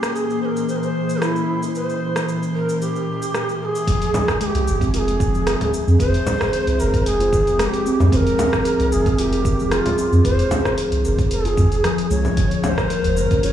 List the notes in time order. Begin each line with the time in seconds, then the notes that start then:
Already playing: A#2 E3 G#3 A#3 C#4 G4 A#4 G5 C6
0.02 E5, cross-stick, cabasa
0.16 G#4, cabasa
0.30 cabasa
0.42 A#4 C5
0.57 cabasa
0.69 C5, cabasa
0.76 A#4
0.83 C5, cabasa
1.09 cabasa
1.22 E4, cross-stick, cabasa
1.36 cabasa
1.63 cabasa
1.75 C5, cabasa
1.89 cabasa
2.16 cross-stick, cabasa
2.29 cabasa
2.43 cabasa
2.55 A#4
2.69 cabasa
2.81 G4, cabasa
2.96 cabasa
3.22 cabasa
3.34 cross-stick, cabasa
3.49 cabasa
3.61 A#4
3.65 G#4
3.75 cabasa
3.87 F1 F3, kick, open hi-hat, cabasa
3.97 G#3
4.02 open hi-hat, cabasa
4.14 low conga, cabasa
4.20 C4
4.28 kick, cross-stick, cabasa
4.41 G#3 G#4, open hi-hat, cabasa
4.45 G4
4.55 C2, open hi-hat, cabasa
4.67 F1, cabasa
4.81 C4, kick, open hi-hat, cabasa
4.93 F1 F4 A#4, open hi-hat, cabasa
4.99 G#4
5.08 open hi-hat, cabasa
5.20 kick, cabasa
5.34 F3, cabasa
5.46 G#4, cross-stick, open hi-hat, cabasa
5.61 open hi-hat, low conga, cabasa
5.74 cabasa
5.87 F2 C4, cabasa
6.00 F1 C5, kick, open hi-hat, cabasa
6.14 open hi-hat, cabasa
6.27 low conga, cabasa
6.41 G#4, kick, cross-stick, cabasa
6.53 open hi-hat, cabasa
6.67 C2, open hi-hat, cabasa
6.79 F1 G#4 A#4, cabasa
6.94 kick, open hi-hat, cabasa
7.06 F1 G#4, open hi-hat, cabasa
7.20 F4, open hi-hat, cabasa
7.33 kick, cabasa
7.47 open hi-hat, cabasa
7.59 G#3 G#4, cross-stick, open hi-hat, cabasa
7.64 G4
7.74 open hi-hat, cabasa
7.86 C4, cabasa
8.00 F2 C4, low conga, cabasa
8.12 F1 F3 C5, kick, open hi-hat, cabasa
8.16 A#4
8.27 open hi-hat, cabasa
8.39 low conga, cabasa
8.53 kick, cross-stick, cabasa
8.65 G#4, open hi-hat, cabasa
8.80 C2, open hi-hat, cabasa
8.92 F1 G#4, cabasa
9.06 C4, kick, open hi-hat, cabasa
9.18 F1 F4 G4, open hi-hat, cabasa
9.33 open hi-hat, cabasa
9.45 kick, cabasa
9.59 F3, cabasa
9.71 F4 G#4, cross-stick, open hi-hat, cabasa
9.86 open hi-hat, low conga, cabasa
9.98 cabasa
10.12 F2 C4, cabasa
10.25 F1 C5, kick, open hi-hat, cabasa
10.39 open hi-hat, cabasa
10.51 low conga, cabasa
10.65 G#4, kick, cross-stick, cabasa
10.78 open hi-hat, cabasa
10.92 C2, open hi-hat, cabasa
11.04 F1 G#4 A#4, cabasa
11.19 kick, open hi-hat, cabasa
11.31 F1 G#4, open hi-hat, cabasa
11.45 F4, open hi-hat, cabasa
11.57 F2, kick, cabasa
11.71 F1, open hi-hat, cabasa
11.84 F3, cross-stick, open hi-hat, cabasa
11.98 open hi-hat, cabasa
12.10 C2 G#3 C#5, cabasa
12.25 F3, low conga, cabasa
12.37 G1 F3 A#3 A#4, kick, open hi-hat, cabasa
12.51 open hi-hat, cabasa
12.61 A#4 C#5, low conga, cabasa
12.68 C5
12.76 A#3, kick, cross-stick, cabasa
12.90 A#4, open hi-hat, cabasa
13.04 F1, open hi-hat, udu, cabasa
13.17 G1 C5, cabasa
13.21 A#4
13.31 C#4, kick, open hi-hat, cabasa
13.39 G4, open hi-hat
13.43 G1 F4 C#5, cabasa